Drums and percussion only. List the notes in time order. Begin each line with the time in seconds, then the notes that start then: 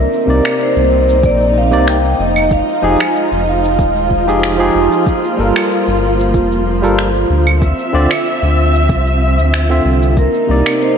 0.13 cabasa
0.45 finger snap, cabasa, claves
0.60 cabasa
0.77 cabasa
1.09 cabasa
1.23 kick, cabasa
1.40 cabasa
1.72 cabasa
1.88 finger snap, cabasa
2.04 cabasa
2.36 cabasa, claves
2.51 kick, cabasa
2.68 cabasa
3.00 finger snap, cabasa, claves
3.15 cabasa
3.32 cabasa
3.64 cabasa
3.79 kick, cabasa
3.96 cabasa
4.11 kick
4.28 cabasa
4.43 finger snap, cabasa
4.61 cabasa
4.92 cabasa
5.07 kick, cabasa
5.24 cabasa
5.56 finger snap, cabasa, claves
5.71 cabasa
5.88 cabasa
6.20 cabasa
6.34 kick, cabasa
6.52 cabasa
6.83 cabasa
6.99 finger snap, cabasa
7.15 cabasa
7.47 cabasa, claves
7.62 kick, cabasa
7.79 cabasa
8.11 finger snap, cabasa, claves
8.26 cabasa
8.43 cabasa
8.75 cabasa
8.89 kick, cabasa
9.07 cabasa
9.38 cabasa
9.54 finger snap, cabasa
9.70 cabasa
10.02 cabasa
10.17 kick, cabasa
10.34 cabasa
10.66 finger snap, cabasa, claves
10.81 cabasa